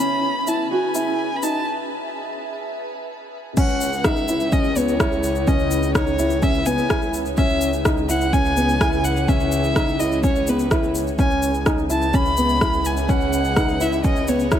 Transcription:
0.00 3.53 C#3 medium
0.00 0.29 C#4 medium
0.00 3.53 C#4 medium
0.00 3.53 G#4 medium
0.00 3.53 B4 medium
0.00 3.53 E5 medium
0.00 0.50 B5 loud
0.47 0.62 E4 medium
0.47 0.71 A5 medium
0.47 shaker medium
0.71 0.86 F#4 medium
0.71 1.38 G#5 loud
0.95 1.25 E4 medium
0.95 shaker medium
1.37 1.45 B5 medium
1.43 1.57 D#4 medium
1.43 1.67 A5 loud
1.43 shaker medium
3.56 7.36 C#2 medium
3.56 7.34 C#4 medium
3.56 3.87 C#4 medium
3.56 7.34 E4 medium
3.56 11.15 G#4 medium
3.56 7.34 B4 medium
3.56 7.34 C#5 medium
3.56 4.07 F#5 loud
3.56 kick loud
3.56 crash loud
3.56 shaker soft
3.69 shaker soft
3.81 shaker medium
3.93 shaker soft
4.04 4.20 D#4 medium
4.04 4.54 E5 loud
4.04 kick loud
4.04 cross-stick loud
4.04 shaker soft
4.16 shaker soft
4.28 4.43 E4 medium
4.28 shaker medium
4.40 shaker soft
4.52 4.67 C#4 medium
4.52 4.79 D#5 loud
4.52 kick loud
4.52 shaker soft
4.64 shaker soft
4.76 4.91 B3 medium
4.76 5.49 C#5 loud
4.76 shaker medium
4.88 shaker soft
5.00 5.30 E4 medium
5.00 kick loud
5.00 cross-stick loud
5.00 shaker soft
5.12 shaker soft
5.23 shaker medium
5.35 shaker soft
5.47 5.77 C#4 loud
5.47 5.94 D#5 loud
5.47 kick loud
5.47 shaker soft
5.59 shaker soft
5.71 shaker medium
5.83 shaker soft
5.94 6.10 D#4 medium
5.94 6.44 C#5 loud
5.94 kick loud
5.94 cross-stick loud
5.94 shaker soft
6.07 shaker soft
6.19 6.34 E4 medium
6.19 shaker medium
6.30 shaker soft
6.42 6.57 C#4 medium
6.42 6.68 E5 loud
6.42 kick loud
6.42 shaker soft
6.54 shaker soft
6.66 6.81 B3 medium
6.66 7.14 G#5 loud
6.66 shaker medium
6.78 shaker soft
6.90 7.20 E4 medium
6.90 kick loud
6.90 cross-stick loud
6.90 shaker soft
7.02 shaker soft
7.14 shaker medium
7.26 shaker soft
7.37 11.16 C#2 loud
7.37 7.68 C#4 loud
7.37 11.15 E4 medium
7.37 9.27 B4 medium
7.37 7.82 E5 loud
7.37 kick loud
7.37 shaker soft
7.49 shaker soft
7.61 shaker medium
7.73 shaker soft
7.85 8.00 D#4 medium
7.85 kick loud
7.85 cross-stick loud
7.85 shaker soft
7.97 shaker soft
8.09 8.24 E4 medium
8.09 8.34 F#5 loud
8.09 shaker medium
8.21 shaker soft
8.33 8.48 C#4 medium
8.33 9.06 G#5 loud
8.33 kick loud
8.33 shaker soft
8.45 shaker soft
8.57 8.72 B3 medium
8.57 shaker medium
8.69 shaker soft
8.81 9.10 E4 medium
8.81 kick loud
8.81 cross-stick loud
8.81 shaker soft
8.93 shaker soft
9.04 9.30 F#5 loud
9.04 shaker medium
9.16 shaker soft
9.28 9.58 C#4 loud
9.28 11.17 C#5 medium
9.28 10.02 E5 loud
9.28 kick loud
9.28 shaker soft
9.40 shaker soft
9.52 shaker medium
9.64 shaker soft
9.75 9.90 D#4 medium
9.75 kick loud
9.75 cross-stick loud
9.75 shaker soft
9.88 shaker soft
9.99 10.14 E4 medium
9.99 10.24 D#5 medium
9.99 shaker medium
10.12 shaker soft
10.23 10.38 C#4 medium
10.23 10.50 C#5 loud
10.23 kick loud
10.23 shaker soft
10.36 shaker soft
10.47 10.63 B3 medium
10.47 10.96 B4 medium
10.47 shaker medium
10.59 shaker soft
10.71 11.01 E4 medium
10.71 kick loud
10.71 cross-stick medium
10.71 shaker soft
10.83 shaker soft
10.95 shaker medium
11.07 shaker soft
11.19 14.60 C#2 medium
11.19 11.48 C#4 loud
11.19 14.60 C#4 medium
11.19 14.60 G#4 medium
11.19 14.60 B4 medium
11.19 14.60 D#5 medium
11.19 14.60 E5 medium
11.19 11.63 G#5 loud
11.19 kick loud
11.19 shaker soft
11.31 shaker soft
11.42 shaker medium
11.54 shaker soft
11.66 11.81 D#4 medium
11.66 kick loud
11.66 cross-stick medium
11.66 shaker soft
11.78 shaker soft
11.90 12.05 E4 medium
11.90 12.17 A5 loud
11.90 shaker medium
12.02 shaker soft
12.14 12.29 C#4 medium
12.14 12.87 B5 loud
12.14 kick loud
12.14 shaker soft
12.26 shaker soft
12.37 12.53 B3 medium
12.37 shaker medium
12.49 shaker soft
12.61 12.91 E4 medium
12.61 kick loud
12.61 cross-stick medium
12.61 shaker soft
12.73 shaker soft
12.85 13.12 G#5 loud
12.85 shaker medium
12.97 shaker soft
13.09 13.38 C#4 loud
13.09 13.83 F#5 loud
13.09 kick loud
13.09 shaker soft
13.21 shaker soft
13.33 shaker medium
13.45 shaker soft
13.56 13.71 D#4 medium
13.56 kick loud
13.56 cross-stick medium
13.56 shaker soft
13.68 shaker soft
13.80 13.95 E4 medium
13.80 14.04 E5 medium
13.80 shaker medium
13.92 shaker soft
14.04 14.19 C#4 medium
14.04 14.29 D#5 loud
14.04 kick loud
14.04 shaker soft
14.16 shaker soft
14.28 14.43 B3 medium
14.28 14.60 C#5 medium
14.28 shaker medium
14.39 shaker soft
14.52 14.60 E4 medium
14.52 kick loud
14.52 cross-stick medium
14.52 shaker soft

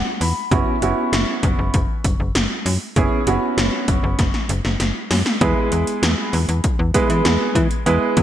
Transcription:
0.00 0.19 F#5 medium
0.21 0.33 E2 loud
0.21 0.49 B5 medium
0.21 open hi-hat medium
0.51 0.64 F#1 loud
0.51 0.75 B3 medium
0.51 0.75 C#4 medium
0.51 0.75 E4 medium
0.51 0.75 F#4 medium
0.51 kick loud
0.51 closed hi-hat medium
0.82 0.95 F#1 medium
0.82 1.75 B3 medium
0.82 1.75 C#4 medium
0.82 1.75 E4 medium
0.82 1.75 F#4 medium
0.82 closed hi-hat medium
1.13 1.25 F#1 loud
1.13 snare loud
1.13 closed hi-hat medium
1.43 1.56 F#1 loud
1.43 kick medium
1.43 closed hi-hat medium
1.59 1.71 F#1 loud
1.74 1.86 F#1 loud
1.74 kick loud
1.74 closed hi-hat medium
2.04 2.17 F#1 medium
2.04 kick medium
2.04 closed hi-hat loud
2.20 2.32 F#1 medium
2.35 2.48 F#1 loud
2.35 snare loud
2.35 closed hi-hat medium
2.66 2.78 F#2 loud
2.66 open hi-hat medium
2.96 3.09 F#1 loud
2.96 3.20 B3 medium
2.96 3.20 C#4 medium
2.96 3.20 E4 medium
2.96 3.20 G#4 medium
2.96 kick loud
2.96 closed hi-hat medium
3.27 3.39 F#1 loud
3.27 4.20 B3 medium
3.27 4.20 C#4 medium
3.27 4.20 E4 medium
3.27 4.20 F#4 medium
3.27 closed hi-hat medium
3.58 3.70 F#1 loud
3.58 snare loud
3.58 closed hi-hat medium
3.88 4.01 F#1 medium
3.88 kick loud
3.88 closed hi-hat medium
4.03 4.16 F#1 loud
4.19 4.31 F#1 loud
4.19 kick loud
4.19 snare medium
4.19 closed hi-hat medium
4.34 snare medium
4.49 4.62 F#1 loud
4.49 closed hi-hat medium
4.65 4.77 F#1 loud
4.65 snare medium
4.80 4.93 F#1 loud
4.80 snare medium
4.80 closed hi-hat medium
5.11 5.23 F#2 loud
5.11 snare loud
5.11 open hi-hat medium
5.26 snare medium
5.41 5.54 E2 loud
5.41 6.34 G#3 medium
5.41 6.34 B3 medium
5.41 6.34 E4 medium
5.41 6.34 G#4 medium
5.41 6.34 B4 medium
5.41 kick loud
5.41 closed hi-hat medium
5.72 5.84 E2 loud
5.72 closed hi-hat medium
5.87 closed hi-hat medium
6.03 6.15 E2 loud
6.03 snare loud
6.03 closed hi-hat medium
6.33 6.46 E2 loud
6.33 open hi-hat medium
6.49 6.61 E2 loud
6.49 closed hi-hat medium
6.64 kick loud
6.64 closed hi-hat medium
6.79 6.92 E2 loud
6.94 7.64 G#3 medium
6.94 7.64 B3 medium
6.94 7.64 E4 medium
6.94 7.64 G#4 medium
6.94 7.64 B4 medium
6.94 kick medium
6.94 closed hi-hat loud
7.10 7.22 E3 medium
7.10 closed hi-hat medium
7.25 7.37 E2 loud
7.25 snare loud
7.25 closed hi-hat medium
7.55 7.68 E3 loud
7.55 kick loud
7.55 closed hi-hat medium
7.71 closed hi-hat soft
7.86 7.99 E2 loud
7.86 8.23 G#3 medium
7.86 8.23 B3 medium
7.86 8.23 E4 medium
7.86 8.23 G#4 medium
7.86 8.23 B4 loud
7.86 closed hi-hat medium
8.17 8.23 E2 loud
8.17 kick loud
8.17 closed hi-hat medium

